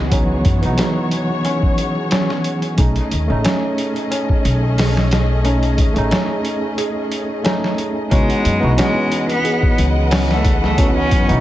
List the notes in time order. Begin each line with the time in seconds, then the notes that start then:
Already playing: C#2 E3 B3 C#4 F#4 G#4
0.11 E3 F#3 B3 C#4 D#4 C#5, kick, closed hi-hat
0.45 F#2, kick, closed hi-hat
0.61 B1 E3 F#3 B3, closed hi-hat
0.66 D#4
0.78 G#4, snare, closed hi-hat
1.11 closed hi-hat
1.45 C#4, closed hi-hat
1.63 kick
1.78 closed hi-hat
2.11 C#4, snare, closed hi-hat
2.30 snare
2.44 closed hi-hat
2.62 closed hi-hat
2.78 B1 A3 C#4 D#4 G#4 D#5, kick, closed hi-hat
2.96 closed hi-hat
3.11 D#2, closed hi-hat
3.28 A1 A3 C#4
3.32 D#4
3.44 C#4, snare, closed hi-hat
3.78 closed hi-hat
3.96 closed hi-hat
4.11 C#4, closed hi-hat
4.29 kick
4.45 B1, closed hi-hat
4.78 G#4, snare, open hi-hat
4.97 snare
5.11 snare, closed hi-hat
5.44 A3 C#4 D#4, closed hi-hat
5.63 closed hi-hat
5.78 D#2, kick, closed hi-hat
5.94 A1 A3 C#4, closed hi-hat
5.98 D#4
6.11 C#4, snare, closed hi-hat
6.45 closed hi-hat
6.78 G#4, closed hi-hat
7.12 closed hi-hat
7.44 A3 C#4 D#4, snare, closed hi-hat
7.64 snare
7.78 closed hi-hat
8.11 C#2 E3 G#3 B3 C#4 D#4 E4 F#4 B4 D#5 F#5, kick, closed hi-hat
8.30 closed hi-hat
8.45 F#2, closed hi-hat
8.60 B1 B3 D#4 E4
8.64 F#4
8.78 G#3 C#4, snare, closed hi-hat
9.12 closed hi-hat
9.30 B3, closed hi-hat
9.44 G#4, closed hi-hat
9.63 kick
9.78 C#2, closed hi-hat
10.11 C#4, snare, open hi-hat
10.30 A3, snare
10.45 kick, closed hi-hat
10.64 A3, snare
10.77 B3 C#4 D#4 E4 F#4, kick, closed hi-hat
10.97 C#4
11.11 F#2, kick, closed hi-hat
11.28 B1 B3 D#4 E4, closed hi-hat
11.32 F#4